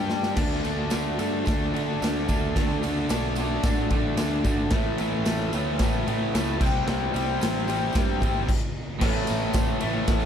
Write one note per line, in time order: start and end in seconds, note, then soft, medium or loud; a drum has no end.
0.00 0.33 G2 medium
0.00 0.35 G3 medium
0.00 0.35 D4 medium
0.00 0.37 D4 medium
0.00 0.36 G4 loud
0.00 0.37 G4 medium
0.00 0.35 D5 medium
0.10 snare medium
0.23 snare medium
0.34 0.60 D2 medium
0.34 0.62 D3 medium
0.34 0.64 A3 loud
0.34 0.64 D4 loud
0.34 4.67 F#4 medium
0.34 4.68 A4 medium
0.34 4.68 D5 medium
0.34 kick loud
0.34 snare loud
0.34 crash loud
0.63 0.89 D2 medium
0.63 0.91 D3 medium
0.63 0.92 A3 medium
0.63 0.92 D4 loud
0.63 ride medium
0.63 tambourine medium
0.90 1.16 D2 medium
0.90 1.17 D3 medium
0.90 1.18 A3 medium
0.90 1.19 D4 medium
0.90 snare loud
0.90 ride loud
0.90 tambourine loud
1.18 1.43 G2 medium
1.18 1.44 D3 medium
1.18 1.45 A3 loud
1.18 1.46 D4 loud
1.18 ride medium
1.18 tambourine medium
1.45 1.70 D2 medium
1.45 1.71 D3 medium
1.45 1.73 A3 medium
1.45 1.74 D4 loud
1.45 kick loud
1.45 snare loud
1.45 ride medium
1.45 tambourine medium
1.73 2.00 D3 medium
1.73 1.97 D3 medium
1.73 2.02 A3 medium
1.73 2.02 D4 medium
1.73 ride medium
1.73 tambourine soft
2.01 2.25 D2 medium
2.01 2.27 D3 medium
2.01 2.28 A3 loud
2.01 2.29 D4 loud
2.01 snare loud
2.01 ride medium
2.01 tambourine loud
2.28 2.52 D2 medium
2.28 2.54 D3 medium
2.28 2.56 A3 medium
2.28 2.56 D4 medium
2.28 kick medium
2.28 ride medium
2.28 tambourine medium
2.55 2.79 D2 medium
2.55 2.82 D3 loud
2.55 2.84 A3 loud
2.55 2.84 D4 loud
2.55 kick loud
2.55 snare loud
2.55 ride loud
2.83 3.07 D2 medium
2.83 3.09 D3 medium
2.83 3.10 A3 medium
2.83 3.10 D4 medium
2.83 ride medium
2.83 tambourine medium
3.09 3.56 B1 medium
3.09 3.37 D3 medium
3.09 3.38 A3 medium
3.09 3.39 D4 medium
3.09 snare loud
3.09 ride loud
3.09 tambourine loud
3.35 3.62 D3 loud
3.35 3.64 A3 loud
3.35 ride medium
3.35 tambourine medium
3.40 3.64 D4 loud
3.63 3.87 A2 medium
3.63 3.89 D3 medium
3.63 3.90 A3 medium
3.63 3.90 D4 medium
3.63 kick loud
3.63 snare loud
3.63 ride loud
3.63 tambourine medium
3.90 4.14 A1 medium
3.90 4.16 D3 medium
3.90 4.17 A3 medium
3.90 4.18 D4 loud
3.90 kick medium
3.90 ride medium
3.90 tambourine soft
4.17 4.42 D2 medium
4.17 4.43 D3 medium
4.17 4.44 A3 medium
4.17 4.45 D4 loud
4.17 snare loud
4.17 ride loud
4.17 tambourine loud
4.44 4.68 G#1 loud
4.44 4.70 D3 medium
4.44 4.71 A3 medium
4.44 4.71 D4 medium
4.44 kick medium
4.44 ride medium
4.44 tambourine medium
4.70 4.95 A1 medium
4.70 4.98 A2 loud
4.70 5.00 E3 loud
4.70 5.00 A3 loud
4.70 6.58 A4 medium
4.70 kick loud
4.70 snare loud
4.70 ride medium
4.75 6.58 E4 medium
4.75 6.59 C#5 medium
4.98 5.23 A1 medium
4.98 5.24 A2 medium
4.98 5.27 E3 loud
4.98 5.26 A3 loud
4.98 ride medium
4.98 tambourine medium
5.25 5.50 A1 medium
5.25 5.52 A2 medium
5.25 5.53 E3 medium
5.25 5.54 A3 medium
5.25 snare loud
5.25 ride medium
5.25 tambourine loud
5.53 5.77 D2 loud
5.53 5.79 A2 medium
5.53 5.81 E3 loud
5.53 5.81 A3 loud
5.53 ride medium
5.53 tambourine medium
5.79 6.03 A1 medium
5.79 6.06 A2 medium
5.79 6.08 E3 loud
5.79 6.07 A3 medium
5.79 kick loud
5.79 snare loud
5.79 ride medium
5.79 tambourine medium
6.07 6.32 A2 medium
6.07 6.31 A2 loud
6.07 6.33 E3 medium
6.07 6.33 A3 medium
6.07 ride medium
6.07 tambourine soft
6.33 6.58 C#2 medium
6.33 6.58 A2 medium
6.33 6.59 E3 loud
6.33 6.60 A3 loud
6.33 snare loud
6.33 ride medium
6.33 tambourine medium
6.59 6.84 C2 medium
6.59 6.83 C3 loud
6.59 6.85 G3 loud
6.59 6.86 C4 loud
6.59 8.44 E4 medium
6.59 8.45 G4 medium
6.59 8.45 C5 medium
6.59 kick loud
6.59 tambourine medium
6.59 crash loud
6.84 7.11 C2 medium
6.84 7.12 C3 loud
6.84 7.12 G3 loud
6.84 7.13 C4 loud
6.84 snare loud
6.89 tambourine soft
7.13 7.38 C2 medium
7.13 7.39 C3 medium
7.13 7.41 G3 loud
7.13 7.41 C4 medium
7.13 ride medium
7.13 tambourine medium
7.40 7.88 A1 medium
7.40 7.67 C3 loud
7.40 7.68 G3 medium
7.40 7.69 C4 loud
7.40 snare loud
7.40 ride loud
7.40 tambourine medium
7.68 7.93 C3 medium
7.68 7.94 G3 medium
7.68 7.94 C4 loud
7.68 ride medium
7.68 tambourine medium
7.93 8.18 G2 medium
7.93 8.21 C3 medium
7.93 8.21 G3 loud
7.93 8.22 C4 loud
7.93 kick loud
7.93 snare loud
7.93 ride loud
7.93 tambourine medium
8.20 8.45 G#1 medium
8.20 8.47 C3 medium
8.20 8.47 G3 medium
8.20 8.48 C4 medium
8.20 kick medium
8.20 ride medium
8.20 tambourine soft
8.49 kick loud
8.49 crash loud
9.00 9.18 A1 medium
9.00 9.83 A2 loud
9.00 9.80 E3 loud
9.00 10.25 E4 medium
9.00 10.25 A4 medium
9.00 10.25 C#5 medium
9.00 kick loud
9.00 snare loud
9.00 crash loud
9.05 9.79 A3 loud
9.27 9.47 A1 medium
9.27 ride medium
9.27 tambourine medium
9.42 tambourine soft
9.53 9.72 A1 medium
9.53 kick loud
9.53 snare loud
9.53 ride loud
9.53 tambourine loud
9.79 10.25 E3 medium
9.79 10.25 A3 medium
9.79 ride medium
9.84 10.00 A1 loud
9.84 10.25 A2 medium
10.07 10.25 A1 medium
10.07 kick loud
10.07 snare loud
10.07 ride loud
10.07 tambourine soft
10.20 tambourine soft